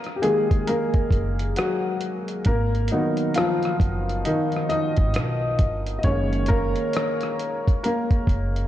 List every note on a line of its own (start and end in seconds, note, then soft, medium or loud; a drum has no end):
0.00 0.24 A#3 medium
0.00 0.67 A#4 loud
0.00 closed hi-hat soft
0.07 cross-stick soft
0.16 0.22 G4 medium
0.22 1.53 D#3 medium
0.22 0.65 G#3 medium
0.22 0.68 A#3 medium
0.22 0.69 G#4 medium
0.22 closed hi-hat medium
0.51 kick medium
0.51 closed hi-hat soft
0.67 1.54 A#3 medium
0.67 1.60 A#4 medium
0.67 closed hi-hat medium
0.94 kick medium
0.94 closed hi-hat soft
1.11 1.52 F#1 medium
1.11 kick medium
1.11 closed hi-hat medium
1.39 closed hi-hat soft
1.56 2.43 F#3 medium
1.56 2.49 F#4 medium
1.56 cross-stick loud
1.56 closed hi-hat medium
2.01 closed hi-hat medium
2.28 closed hi-hat soft
2.45 2.87 G#1 loud
2.45 2.89 A#3 medium
2.45 2.92 A#4 medium
2.45 kick loud
2.45 closed hi-hat medium
2.75 closed hi-hat soft
2.88 3.37 D#4 medium
2.88 closed hi-hat medium
2.92 3.34 D#3 medium
2.92 6.01 F#3 medium
2.92 6.01 A#3 soft
2.92 6.01 B3 medium
3.17 closed hi-hat soft
3.34 4.22 F3 medium
3.34 4.28 F4 medium
3.34 cross-stick loud
3.34 closed hi-hat medium
3.63 cross-stick soft
3.63 closed hi-hat soft
3.80 4.21 F#1 medium
3.80 kick loud
3.80 closed hi-hat medium
4.09 closed hi-hat soft
4.25 4.37 D#3 medium
4.25 4.35 D#4 loud
4.25 closed hi-hat medium
4.52 closed hi-hat soft
4.57 cross-stick soft
4.69 5.96 D#4 medium
4.69 5.95 D#5 loud
4.69 closed hi-hat medium
4.97 5.13 G#1 medium
4.97 kick medium
4.97 closed hi-hat soft
5.14 5.56 B1 medium
5.14 cross-stick loud
5.14 closed hi-hat medium
5.59 6.01 G1 medium
5.59 kick medium
5.59 closed hi-hat medium
5.86 closed hi-hat soft
5.99 6.04 D#5 medium
6.03 6.73 F#1 loud
6.03 6.69 D#3 medium
6.03 6.69 G#3 medium
6.03 6.48 A#3 medium
6.03 6.47 C#4 medium
6.03 6.50 C#5 loud
6.03 kick loud
6.03 closed hi-hat medium
6.33 closed hi-hat soft
6.46 7.80 A#3 medium
6.46 7.82 A#4 loud
6.46 kick loud
6.46 closed hi-hat medium
6.76 closed hi-hat soft
6.93 cross-stick loud
6.93 closed hi-hat medium
7.21 cross-stick soft
7.21 closed hi-hat soft
7.39 closed hi-hat medium
7.67 kick medium
7.67 closed hi-hat soft
7.83 8.68 A#3 medium
7.83 8.68 A#4 medium
7.83 closed hi-hat medium
8.11 kick medium
8.11 closed hi-hat soft
8.27 8.68 F#1 medium
8.27 kick medium
8.27 closed hi-hat medium
8.56 closed hi-hat soft